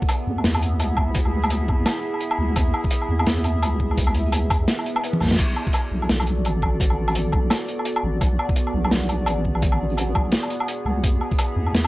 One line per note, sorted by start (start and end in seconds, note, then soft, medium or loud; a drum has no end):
0.00 5.35 B3 medium
0.00 5.35 E4 medium
0.00 5.35 G#4 medium
0.00 5.35 E5 medium
0.00 kick loud
0.00 tambourine soft
0.05 closed hi-hat medium
0.05 tambourine soft
0.05 low woodblock medium
0.09 tambourine soft
0.14 tambourine soft
0.27 0.43 E2 medium
0.38 low woodblock soft
0.44 0.81 E2 loud
0.44 snare loud
0.44 closed hi-hat medium
0.54 tambourine medium
0.54 low woodblock medium
0.62 closed hi-hat medium
0.80 1.67 D2 loud
0.80 closed hi-hat medium
0.80 low woodblock soft
0.97 kick medium
0.97 low woodblock medium
1.15 kick loud
1.15 closed hi-hat medium
1.25 low woodblock soft
1.42 tambourine soft
1.42 low woodblock medium
1.50 closed hi-hat medium
1.68 1.85 E2 medium
1.68 kick loud
1.68 low woodblock soft
1.86 snare loud
1.86 closed hi-hat medium
1.86 low woodblock medium
2.14 low woodblock soft
2.21 closed hi-hat medium
2.31 low woodblock medium
2.38 2.55 D2 medium
2.56 2.73 E2 loud
2.56 kick loud
2.56 closed hi-hat medium
2.56 low woodblock medium
2.74 low woodblock medium
2.84 kick loud
2.84 tambourine soft
2.91 closed hi-hat medium
3.02 low woodblock medium
3.09 3.25 E2 medium
3.19 low woodblock medium
3.26 3.64 E2 loud
3.26 snare loud
3.26 closed hi-hat medium
3.37 tambourine medium
3.44 closed hi-hat medium
3.44 low woodblock soft
3.62 4.49 D2 loud
3.62 closed hi-hat medium
3.62 low woodblock medium
3.80 kick medium
3.91 low woodblock medium
3.98 kick loud
3.98 closed hi-hat medium
4.07 low woodblock medium
4.15 closed hi-hat medium
4.26 tambourine soft
4.32 closed hi-hat medium
4.32 low woodblock medium
4.50 4.67 E2 medium
4.50 kick loud
4.50 closed hi-hat medium
4.50 low woodblock medium
4.68 snare loud
4.68 closed hi-hat medium
4.68 swell medium
4.79 low woodblock medium
4.86 closed hi-hat medium
4.86 tambourine soft
4.96 low woodblock medium
5.04 closed hi-hat medium
5.13 high tom medium
5.20 5.37 F#2 loud
5.20 kick medium
5.20 snare soft
5.20 low woodblock medium
5.23 snare soft
5.26 snare soft
5.28 snare soft
5.31 snare medium
5.33 snare medium
5.35 snare medium
5.36 5.55 B1 loud
5.36 11.87 B3 medium
5.36 10.99 F#4 medium
5.36 8.18 A4 medium
5.36 10.99 D5 medium
5.36 kick loud
5.36 snare medium
5.36 closed hi-hat medium
5.36 crash medium
5.56 low woodblock medium
5.67 kick loud
5.67 tambourine soft
5.73 closed hi-hat medium
5.73 low woodblock medium
5.91 6.08 B1 medium
6.02 low woodblock medium
6.09 6.46 B1 loud
6.09 snare loud
6.09 closed hi-hat medium
6.19 tambourine medium
6.19 low woodblock medium
6.27 closed hi-hat medium
6.45 7.32 A1 loud
6.45 closed hi-hat medium
6.45 low woodblock medium
6.62 kick medium
6.62 low woodblock medium
6.80 kick loud
6.80 closed hi-hat medium
6.90 low woodblock medium
7.08 tambourine soft
7.08 low woodblock medium
7.12 closed hi-hat medium
7.12 tambourine soft
7.15 tambourine soft
7.32 7.49 B1 medium
7.32 kick loud
7.32 low woodblock medium
7.50 snare loud
7.50 closed hi-hat medium
7.50 low woodblock medium
7.68 closed hi-hat medium
7.79 low woodblock medium
7.85 closed hi-hat medium
7.96 low woodblock medium
8.03 8.20 A1 medium
8.21 8.38 B1 loud
8.21 11.87 G#4 medium
8.21 kick loud
8.21 closed hi-hat medium
8.21 low woodblock soft
8.39 low woodblock medium
8.49 kick loud
8.49 tambourine soft
8.56 closed hi-hat medium
8.67 low woodblock medium
8.74 8.90 B1 loud
8.85 low woodblock medium
8.91 9.28 B1 loud
8.91 snare loud
8.91 closed hi-hat medium
9.02 tambourine medium
9.09 closed hi-hat medium
9.09 low woodblock soft
9.26 10.14 A1 loud
9.26 closed hi-hat medium
9.26 low woodblock medium
9.45 kick medium
9.55 low woodblock medium
9.62 kick loud
9.62 closed hi-hat medium
9.72 low woodblock medium
9.90 tambourine soft
9.97 closed hi-hat medium
9.97 low woodblock medium
10.15 10.32 B1 medium
10.15 kick loud
10.15 low woodblock medium
10.32 snare loud
10.32 closed hi-hat medium
10.43 low woodblock medium
10.50 closed hi-hat medium
10.60 low woodblock medium
10.68 closed hi-hat medium
10.85 11.02 C#2 medium
10.85 low woodblock soft
11.03 11.20 E2 loud
11.03 11.87 E4 medium
11.03 11.87 E5 medium
11.03 kick loud
11.03 closed hi-hat medium
11.21 low woodblock soft
11.31 kick loud
11.31 tambourine soft
11.39 closed hi-hat medium
11.39 low woodblock medium
11.56 11.73 E2 medium
11.66 low woodblock soft
11.74 11.87 E2 loud
11.74 snare loud
11.74 closed hi-hat medium